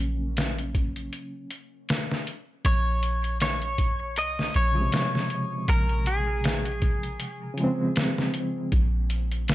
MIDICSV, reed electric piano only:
0, 0, Header, 1, 2, 480
1, 0, Start_track
1, 0, Key_signature, -5, "minor"
1, 0, Tempo, 759494
1, 1671, Time_signature, 4, 2, 24, 8
1, 6034, End_track
2, 0, Start_track
2, 0, Title_t, "Reed electric piano"
2, 0, Program_c, 0, 4
2, 0, Note_on_c, 0, 49, 76
2, 0, Note_on_c, 0, 54, 65
2, 0, Note_on_c, 0, 58, 68
2, 0, Note_on_c, 0, 61, 84
2, 911, Note_off_c, 0, 49, 0
2, 921, Note_off_c, 0, 54, 0
2, 932, Note_off_c, 0, 58, 0
2, 943, Note_off_c, 0, 61, 0
2, 2980, Note_on_c, 0, 49, 74
2, 2999, Note_on_c, 0, 53, 73
2, 3021, Note_on_c, 0, 56, 67
2, 3042, Note_on_c, 0, 48, 83
2, 4753, Note_off_c, 0, 49, 0
2, 4762, Note_off_c, 0, 53, 0
2, 4764, Note_on_c, 0, 49, 90
2, 4773, Note_off_c, 0, 56, 0
2, 4784, Note_off_c, 0, 48, 0
2, 4784, Note_on_c, 0, 53, 77
2, 4805, Note_on_c, 0, 56, 80
2, 4827, Note_on_c, 0, 60, 94
2, 5485, Note_off_c, 0, 49, 0
2, 5495, Note_off_c, 0, 53, 0
2, 5506, Note_off_c, 0, 56, 0
2, 5516, Note_off_c, 0, 60, 0
2, 6034, End_track
0, 0, End_of_file